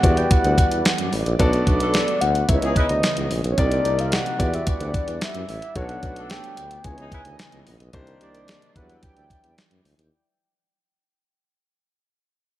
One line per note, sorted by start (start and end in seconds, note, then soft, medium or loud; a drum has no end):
0.00 0.25 E2 loud
0.00 1.39 G3 medium
0.00 0.90 B3 medium
0.00 0.91 E4 medium
0.00 0.91 F#4 medium
0.00 0.91 G4 medium
0.00 2.46 D5 medium
0.00 0.91 D5 medium
0.00 0.19 F#5 loud
0.00 1.39 F#5 medium
0.00 kick loud
0.00 closed hi-hat loud
0.04 1.39 E3 medium
0.17 0.33 G5 loud
0.17 closed hi-hat medium
0.31 1.13 F#5 loud
0.31 kick loud
0.31 closed hi-hat loud
0.44 0.55 D2 loud
0.44 closed hi-hat medium
0.58 kick medium
0.58 closed hi-hat medium
0.71 0.82 E2 medium
0.71 closed hi-hat medium
0.85 snare loud
0.85 closed hi-hat medium
0.98 1.10 F#2 medium
0.98 closed hi-hat medium
1.13 1.23 A1 medium
1.13 open hi-hat medium
1.26 1.37 A#1 loud
1.26 closed hi-hat medium
1.39 1.61 B1 loud
1.39 2.47 A3 medium
1.39 2.22 B3 loud
1.39 3.55 B3 medium
1.39 2.22 D4 loud
1.39 2.23 F#4 loud
1.39 2.23 A4 loud
1.39 2.23 D5 loud
1.39 kick loud
1.39 closed hi-hat medium
1.53 closed hi-hat medium
1.66 2.00 B1 medium
1.66 2.22 D5 loud
1.66 kick medium
1.66 closed hi-hat medium
1.80 2.19 F#3 medium
1.80 2.19 D4 medium
1.80 2.19 A4 medium
1.80 closed hi-hat medium
1.94 snare loud
1.94 closed hi-hat medium
2.08 closed hi-hat medium
2.21 2.43 D2 loud
2.21 2.50 F#5 loud
2.21 closed hi-hat medium
2.35 closed hi-hat medium
2.48 2.60 C#2 loud
2.48 3.57 C#3 medium
2.48 3.57 E3 medium
2.48 3.32 B3 medium
2.48 3.32 D#4 medium
2.48 3.32 E4 medium
2.48 3.32 G#4 medium
2.48 3.32 C#5 medium
2.48 3.57 D#5 medium
2.48 2.76 E5 loud
2.48 kick loud
2.48 closed hi-hat loud
2.62 2.73 C#2 loud
2.62 2.74 E3 medium
2.62 2.74 D#4 medium
2.62 2.74 G#4 loud
2.62 closed hi-hat medium
2.76 2.85 G#3 medium
2.76 2.85 E4 medium
2.76 2.85 B4 loud
2.76 3.27 D#5 medium
2.76 kick medium
2.76 closed hi-hat medium
2.89 3.00 D2 loud
2.89 closed hi-hat medium
3.03 snare loud
3.03 closed hi-hat medium
3.17 3.28 C#2 medium
3.17 closed hi-hat medium
3.30 3.41 A#1 loud
3.30 open hi-hat medium
3.44 3.55 B1 loud
3.44 closed hi-hat medium
3.51 3.60 C#5 medium
3.58 3.80 C2 loud
3.58 4.39 C3 medium
3.58 4.39 A#3 medium
3.58 4.40 C4 medium
3.58 3.64 D4 medium
3.58 4.39 D#4 medium
3.58 4.38 G4 medium
3.58 4.40 A#4 medium
3.58 5.74 D5 medium
3.58 4.38 D5 loud
3.58 4.01 D5 loud
3.58 kick loud
3.58 closed hi-hat loud
3.65 4.43 D#4 medium
3.72 closed hi-hat medium
3.85 4.17 C2 loud
3.85 closed hi-hat medium
3.99 4.15 F5 medium
3.99 closed hi-hat medium
4.12 4.56 F#5 loud
4.12 snare loud
4.12 closed hi-hat medium
4.26 closed hi-hat medium
4.39 4.61 E2 loud
4.39 5.75 E3 medium
4.39 5.75 G3 medium
4.39 5.26 B3 medium
4.39 5.27 E4 medium
4.39 5.27 F#4 medium
4.39 5.27 G4 medium
4.39 5.27 D5 medium
4.39 5.75 F#5 medium
4.39 kick loud
4.39 closed hi-hat loud
4.54 4.67 E5 loud
4.54 closed hi-hat medium
4.67 5.24 D5 medium
4.67 kick loud
4.67 closed hi-hat loud
4.80 4.91 D2 loud
4.80 closed hi-hat medium
4.94 kick loud
4.94 closed hi-hat medium
5.07 5.18 E2 medium
5.07 closed hi-hat medium
5.21 5.49 E5 medium
5.21 snare loud
5.21 closed hi-hat medium
5.35 5.46 F#2 medium
5.35 closed hi-hat medium
5.48 5.59 A1 medium
5.48 5.74 E5 loud
5.48 open hi-hat medium
5.62 closed hi-hat soft
5.75 5.97 B1 loud
5.75 6.84 A3 medium
5.75 6.59 B3 medium
5.75 7.92 B3 medium
5.75 5.82 C#4 medium
5.75 6.84 D4 medium
5.75 6.59 F#4 medium
5.75 6.59 A4 medium
5.75 6.59 C#5 loud
5.75 6.32 F#5 loud
5.75 kick loud
5.75 closed hi-hat loud
5.82 6.62 D4 medium
5.89 closed hi-hat medium
6.03 6.36 B1 loud
6.03 kick medium
6.03 closed hi-hat medium
6.16 6.56 F#3 medium
6.16 6.56 D4 medium
6.16 6.56 A4 medium
6.16 closed hi-hat medium
6.30 6.86 G5 loud
6.30 snare loud
6.30 closed hi-hat medium
6.44 closed hi-hat medium
6.57 6.79 D2 medium
6.57 closed hi-hat medium
6.71 closed hi-hat medium
6.84 6.96 C#2 loud
6.84 7.93 C#3 medium
6.84 7.93 E3 loud
6.84 7.67 B3 medium
6.84 7.68 D#4 medium
6.84 7.68 E4 medium
6.84 7.68 G#4 medium
6.84 7.68 C#5 medium
6.84 7.93 D#5 medium
6.84 7.67 G#5 loud
6.84 kick loud
6.84 closed hi-hat loud
6.98 7.09 C#2 loud
6.98 7.10 E3 medium
6.98 7.10 D#4 medium
6.98 7.10 G#4 medium
6.98 closed hi-hat medium
7.12 7.21 G#3 loud
7.12 7.21 E4 loud
7.12 7.21 B4 loud
7.12 kick loud
7.12 closed hi-hat medium
7.25 7.36 D2 medium
7.25 closed hi-hat medium
7.39 snare loud
7.39 closed hi-hat medium
7.52 7.64 C#2 medium
7.52 closed hi-hat medium
7.67 7.78 A#1 loud
7.67 open hi-hat medium
7.80 7.91 B1 loud
7.80 closed hi-hat medium
7.93 8.15 C2 loud
7.93 8.75 C3 medium
7.93 8.75 D#3 medium
7.93 8.76 A#3 loud
7.93 8.75 A#3 medium
7.93 8.74 D4 loud
7.93 8.76 D#4 medium
7.93 8.76 G4 medium
7.93 8.76 C5 loud
7.93 10.10 D5 medium
7.93 kick loud
7.93 closed hi-hat medium
8.07 closed hi-hat medium
8.21 8.54 C2 medium
8.21 8.73 D5 medium
8.21 closed hi-hat medium
8.35 closed hi-hat medium
8.48 snare loud
8.48 closed hi-hat medium
8.62 closed hi-hat medium
8.75 8.98 E2 loud
8.75 10.11 E3 medium
8.75 9.63 F#3 medium
8.75 9.63 G3 medium
8.75 9.63 D4 medium
8.75 10.11 E4 medium
8.75 9.63 E4 medium
8.75 9.63 B4 medium
8.75 9.01 F#5 loud
8.75 10.11 G5 medium
8.75 kick loud
8.75 closed hi-hat medium
8.89 closed hi-hat medium
9.03 9.54 G5 loud
9.03 kick loud
9.03 closed hi-hat loud
9.17 9.28 D2 loud
9.17 closed hi-hat soft
9.30 kick medium
9.30 closed hi-hat medium
9.44 9.55 E2 medium
9.44 closed hi-hat medium
9.58 snare loud
9.58 closed hi-hat loud
9.71 9.82 F#2 medium
9.71 closed hi-hat medium
9.84 9.95 D2 medium
9.84 open hi-hat medium
9.98 10.09 D#2 medium
9.98 closed hi-hat medium